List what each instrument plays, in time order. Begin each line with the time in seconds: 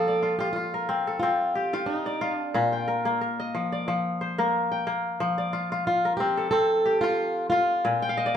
Already playing: kora F3 A#3 A#4 G5, steel-string acoustic guitar A4
0.08 kora D5
0.23 kora F4
0.39 kora F4, steel-string acoustic guitar G4
0.53 steel-string acoustic guitar F4, kora F4
0.74 kora A#4
0.89 kora C4
1.07 kora A4
1.20 kora C4, steel-string acoustic guitar F4
1.55 kora G4
1.73 kora F4
1.86 steel-string acoustic guitar D#4
2.06 kora D5
2.21 kora F4
2.35 steel-string acoustic guitar D4
2.54 kora A#2, steel-string acoustic guitar F4
2.72 kora G5
2.88 kora A#4
3.05 kora A#3
3.21 kora A#4
3.40 kora D#5
3.55 kora F3
3.72 kora D5
3.88 kora F3
4.21 kora C5
4.38 kora A#3 A#4
4.72 kora G5
4.87 kora A#3
5.20 kora F3
5.38 kora D5
5.53 kora F4
5.72 kora F4
5.87 kora F4, steel-string acoustic guitar F4
6.05 kora A#4
6.17 kora C4, steel-string acoustic guitar G4
6.37 kora A4
6.51 kora C4, steel-string acoustic guitar A4
6.85 kora G4
7.01 steel-string acoustic guitar F4, kora F4
7.50 steel-string acoustic guitar F4, kora F4
7.85 kora A#2
8.02 kora G5
8.09 kora F5
8.17 kora D#5
8.26 kora D5